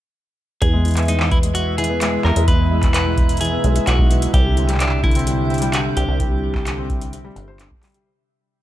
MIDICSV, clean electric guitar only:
0, 0, Header, 1, 2, 480
1, 0, Start_track
1, 0, Tempo, 465116
1, 637, Time_signature, 4, 2, 24, 8
1, 8900, End_track
2, 0, Start_track
2, 0, Title_t, "Clean electric guitar"
2, 0, Program_c, 0, 27
2, 640, Note_on_c, 0, 68, 98
2, 1120, Note_on_c, 0, 63, 89
2, 1133, Note_off_c, 0, 68, 0
2, 1342, Note_off_c, 0, 63, 0
2, 1357, Note_on_c, 0, 64, 91
2, 1422, Note_off_c, 0, 64, 0
2, 1597, Note_on_c, 0, 66, 92
2, 1820, Note_off_c, 0, 66, 0
2, 1838, Note_on_c, 0, 68, 98
2, 2315, Note_off_c, 0, 68, 0
2, 2319, Note_on_c, 0, 70, 97
2, 2555, Note_off_c, 0, 70, 0
2, 2559, Note_on_c, 0, 71, 108
2, 3025, Note_off_c, 0, 71, 0
2, 3037, Note_on_c, 0, 71, 103
2, 3483, Note_off_c, 0, 71, 0
2, 3515, Note_on_c, 0, 68, 100
2, 3991, Note_off_c, 0, 68, 0
2, 3995, Note_on_c, 0, 66, 92
2, 4473, Note_off_c, 0, 66, 0
2, 4477, Note_on_c, 0, 67, 99
2, 4923, Note_off_c, 0, 67, 0
2, 4958, Note_on_c, 0, 62, 86
2, 5181, Note_off_c, 0, 62, 0
2, 5197, Note_on_c, 0, 64, 93
2, 5919, Note_on_c, 0, 66, 93
2, 5939, Note_off_c, 0, 64, 0
2, 5983, Note_off_c, 0, 66, 0
2, 6159, Note_on_c, 0, 67, 87
2, 7797, Note_off_c, 0, 67, 0
2, 8900, End_track
0, 0, End_of_file